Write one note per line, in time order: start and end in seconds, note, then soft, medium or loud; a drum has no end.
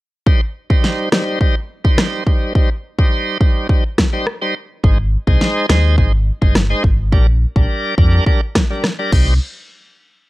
0.26 0.41 G3 medium
0.26 0.41 D#4 medium
0.26 0.41 C5 medium
0.26 kick loud
0.70 1.09 G3 medium
0.70 1.09 D#4 medium
0.70 1.09 C5 medium
0.70 kick medium
0.84 snare medium
1.12 1.39 G3 medium
1.12 1.39 D#4 medium
1.12 1.39 C5 medium
1.12 cross-stick medium
1.12 snare loud
1.41 1.55 G3 medium
1.41 1.55 D#4 medium
1.41 1.55 C5 loud
1.41 kick medium
1.84 2.23 G3 medium
1.84 2.23 D#4 medium
1.84 2.24 C5 medium
1.84 kick medium
1.98 cross-stick loud
1.98 snare loud
2.26 2.53 G3 medium
2.26 2.53 D#4 medium
2.26 2.53 C5 medium
2.26 kick medium
2.55 2.69 G3 medium
2.55 2.70 D#4 medium
2.55 2.70 C5 loud
2.55 kick loud
2.99 3.38 G3 medium
2.99 3.38 D#4 medium
2.99 3.38 C5 medium
2.99 kick medium
3.41 3.67 G3 medium
3.41 3.67 D#4 medium
3.41 3.67 C5 medium
3.41 kick loud
3.69 3.84 D#4 medium
3.69 3.84 C5 loud
3.69 kick medium
3.98 kick medium
3.98 cross-stick medium
3.98 snare loud
4.13 4.26 G3 medium
4.13 4.26 D#4 medium
4.13 4.26 C5 medium
4.27 cross-stick medium
4.42 4.54 G3 medium
4.42 4.54 D#4 medium
4.42 4.55 C5 medium
4.84 5.17 G#1 loud
4.84 4.98 G#3 medium
4.84 4.98 D#4 medium
4.84 4.98 C5 loud
4.84 kick loud
5.27 5.38 C2 loud
5.27 5.66 G#3 medium
5.27 5.66 D#4 medium
5.27 5.66 C5 medium
5.27 kick medium
5.41 snare medium
5.69 5.99 D#2 medium
5.69 5.96 G#3 medium
5.69 5.96 D#4 medium
5.69 5.96 C5 medium
5.69 cross-stick medium
5.69 snare loud
5.98 6.31 G#1 loud
5.98 6.12 D#4 medium
5.98 6.13 C5 loud
5.98 kick medium
6.42 6.74 G1 medium
6.42 6.54 G#3 medium
6.42 6.55 D#4 medium
6.42 6.55 C5 medium
6.42 kick medium
6.55 cross-stick medium
6.55 snare loud
6.70 6.83 G#3 medium
6.70 6.83 D#4 medium
6.70 6.83 C5 medium
6.84 7.14 G#1 medium
6.84 kick medium
7.12 7.46 A#1 loud
7.12 7.27 G3 medium
7.12 7.27 D4 medium
7.12 7.27 A#4 loud
7.12 kick loud
7.56 7.66 A#1 medium
7.56 7.95 G3 medium
7.56 7.95 D4 medium
7.56 7.95 A#4 medium
7.56 kick medium
7.98 8.20 F2 loud
7.98 8.24 G3 medium
7.98 8.25 D4 medium
7.98 8.25 A#4 medium
7.98 kick loud
8.26 8.41 G3 medium
8.26 8.41 D4 medium
8.26 8.41 A#4 loud
8.26 kick medium
8.55 kick medium
8.55 cross-stick medium
8.55 snare loud
8.70 8.83 G3 medium
8.70 8.83 D4 medium
8.70 8.83 A#4 medium
8.84 cross-stick medium
8.84 snare medium
8.99 9.11 G3 medium
8.99 9.12 D4 medium
8.99 9.12 A#4 medium
9.12 9.39 C2 medium
9.12 9.34 G3 medium
9.12 9.34 D#4 medium
9.12 9.34 C5 medium
9.12 kick loud
9.12 crash medium